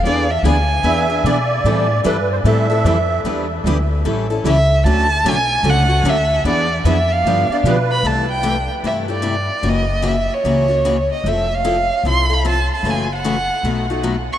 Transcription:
0.03 E2 E3 B3 D4 G#4 B4 D5
0.31 E5
0.43 D2 E3 B3 D4 G#4 B4
0.47 G#5
0.83 E2 E3 B3 D4 G#4 B4 E5
1.09 B3 D4 G#4
1.24 B2 E3 B3 D4 G#4 B4 D5
1.64 A2 E3 G3 C4 E4 A4
2.04 G2 E3 G3 C4 E4 A4 B4
2.31 C5
2.44 A2 E3 G3 C4 E4 A4 E5
2.70 C4 E4 A4
2.84 F2 E3 G3 C4 E4 A4
3.24 E2 E3 G3 B3 D4 E4 G4 B4
3.64 D2 E3 G3 B3 D4 E4 G4 B4
4.05 A1 E3 G3 C#4 E4 A4
4.30 C#4 E4 A4
4.44 C#2 E3 G3 C#4 E4 A4 E5
4.84 D2 D3 F#3 A3 C#4 F#4 A4 A5
5.24 B1 D3 F#3 A3 C#4 F#4 A4
5.29 G#5
5.63 C#2 D3 F#3 A3 C#4 F#4 A4
5.70 F#5
5.88 A3 C#4 F#4
6.03 D2 D3 F#3 A3 C#4 F#4 A4
6.09 E5
6.44 E2 E3 B3 D4 G#4 B4
6.48 D5
6.85 F2 E3 B3 D4 G#4 B4 E5
7.12 F5
7.24 G2 D3 F3 B3 D4 G4
7.49 B3 D4 G4 D5, muted upright bass stroke
7.63 B2 D3 F3 B3 D4 G4 B4
7.91 B5
8.03 C2 C3 E3 A3 E4 G4 A5
8.32 G5
8.43 C3 E3 A3 E4 G4
8.83 G2 C3 E3 A3 E4 G4 E5
9.08 A3 E4 G4 D5
9.22 C3 E3 A3 E4 G4
9.63 F#1 C#3 E3 A#3 C#4 F#4
9.69 D#5
10.02 C#3 E3 A#3 C#4 F#4
10.08 E5
10.33 C#5
10.44 C#2 C#3 E3 A#3 C#4 F#4
10.68 A#3 C#4 F#4
10.85 C#3 E3 A#3 C#4 F#4
11.13 D#5
11.24 F1 F3 C4 E4 A4
11.28 E5
11.54 F5
11.65 F3 C4 E4 A4
12.03 C2 F3 C4 E4 A4
12.09 C6
12.29 C4 E4 A4 B5
12.45 F3 C4 E4 A4
12.49 A5
12.75 A5
12.83 F#1 C#3 E3 A3 C#4 F#4
12.91 G#5
13.15 F#5
13.24 C#3 E3 A3 C#4 F#4
13.63 B1 B2 F#3 A3 D#4 F#4
13.90 A3 D#4 F#4
14.03 B2 F#3 A3 D#4 F#4
14.33 C#6

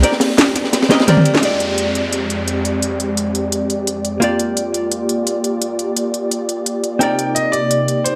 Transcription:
Already playing: A#3 C4 D#4 G4 D5
0.03 C4 G4 A#4 D5, closed hi-hat, ride
0.12 snare
0.20 snare, closed hi-hat, open hi-hat
0.30 snare
0.38 snare, closed hi-hat, ride
0.56 snare, closed hi-hat, ride
0.64 snare
0.73 snare, closed hi-hat, ride
0.82 snare, ride
0.90 C4 G4 A#4 D#5, snare, closed hi-hat, ride
0.99 snare, ride
1.07 C4 G4 A#4 D5, snare, closed hi-hat, mid tom, ride
1.17 mid tom
1.25 closed hi-hat, ride
1.35 snare
1.41 F2 G#3 C4 F4 G4 D5, closed hi-hat, downlifter
1.60 closed hi-hat
1.78 closed hi-hat
1.95 closed hi-hat
2.13 closed hi-hat
2.30 closed hi-hat
2.48 closed hi-hat
2.65 closed hi-hat
2.82 closed hi-hat
3.00 closed hi-hat
3.17 closed hi-hat
3.35 closed hi-hat
3.52 closed hi-hat
3.70 closed hi-hat
3.87 closed hi-hat
4.05 closed hi-hat
4.20 A#3 F4 G4 D5, closed hi-hat
4.39 closed hi-hat
4.57 closed hi-hat
4.74 closed hi-hat
4.92 closed hi-hat
5.09 closed hi-hat
5.27 closed hi-hat
5.44 closed hi-hat
5.62 closed hi-hat
5.79 closed hi-hat
5.97 closed hi-hat
6.14 closed hi-hat
6.31 closed hi-hat
6.49 closed hi-hat
6.66 closed hi-hat
6.84 closed hi-hat
6.99 C3 A#3 C4 D#4 A#4 D5 G5, closed hi-hat
7.19 closed hi-hat
7.35 D#5, closed hi-hat
7.52 D5, closed hi-hat
7.71 closed hi-hat
7.88 closed hi-hat
8.04 C5, closed hi-hat

